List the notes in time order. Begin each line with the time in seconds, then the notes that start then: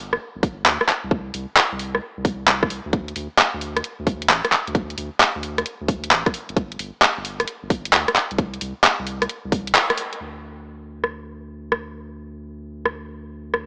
Already playing: G1
0.13 cross-stick
0.36 G1
0.43 kick, open hi-hat
0.66 D2, clap, open hi-hat
0.81 cross-stick
0.89 clap, open hi-hat
1.04 C2
1.11 kick
1.34 C2, open hi-hat
1.57 clap
1.72 C2
1.79 open hi-hat
1.95 cross-stick
2.17 C2
2.25 kick, open hi-hat
2.48 C2, clap, open hi-hat
2.63 kick, cross-stick
2.70 open hi-hat
2.86 D2
2.93 kick, closed hi-hat
3.08 closed hi-hat
3.16 D2, open hi-hat
3.39 clap
3.54 D2
3.61 open hi-hat
3.77 cross-stick, closed hi-hat
3.84 closed hi-hat
3.99 D2
4.07 kick, open hi-hat
4.22 closed hi-hat
4.29 A1, clap, open hi-hat
4.45 cross-stick, closed hi-hat
4.52 clap, open hi-hat
4.67 D2, closed hi-hat
4.75 kick, closed hi-hat
4.90 closed hi-hat
4.98 D2, open hi-hat
5.20 clap
5.35 D2
5.43 open hi-hat
5.58 cross-stick, closed hi-hat
5.66 closed hi-hat
5.81 D2
5.88 kick, open hi-hat
6.04 closed hi-hat
6.11 A1, clap, open hi-hat
6.26 kick, cross-stick, closed hi-hat
6.34 open hi-hat
6.49 G1, closed hi-hat
6.57 kick, closed hi-hat
6.72 closed hi-hat
6.79 G1, open hi-hat
7.02 clap
7.17 G1
7.25 open hi-hat
7.40 cross-stick, closed hi-hat
7.48 closed hi-hat
7.63 G1
7.70 kick, open hi-hat
7.85 closed hi-hat
7.93 D2, clap, open hi-hat
8.08 cross-stick, closed hi-hat
8.16 clap, open hi-hat
8.31 C2, closed hi-hat
8.38 kick, closed hi-hat
8.54 closed hi-hat
8.61 C2, open hi-hat
8.84 clap
8.99 C2
9.07 open hi-hat
9.22 cross-stick, closed hi-hat
9.29 closed hi-hat
9.45 C2
9.52 kick, open hi-hat
9.67 closed hi-hat
9.75 clap, open hi-hat
9.90 cross-stick, closed hi-hat
9.98 open hi-hat
10.13 closed hi-hat
10.20 D2
11.04 cross-stick
11.72 cross-stick
12.85 cross-stick
13.54 cross-stick